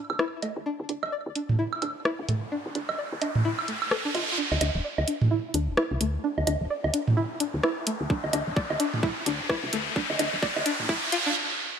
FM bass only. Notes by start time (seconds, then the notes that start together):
0.10 D2
0.56 D2
0.80 D2
0.89 D2
1.03 D1
1.26 D2
1.82 D2
1.96 D1
2.19 C2
2.29 D2
2.66 D2
2.75 D2
2.89 D1
3.12 D2
4.15 D2
4.52 D2
4.61 D2
4.75 D1
4.98 D2
5.54 D2
5.68 D1
5.91 C2
6.01 D2
6.38 D2
6.47 D2
6.61 D1
6.84 D2
7.54 D2
8.01 D2
8.24 D2
8.33 D2
8.47 D1
8.70 D2
9.26 D2
9.40 D1
9.63 C2
9.73 D2
10.10 D2
10.19 D2
10.33 D1
10.56 D2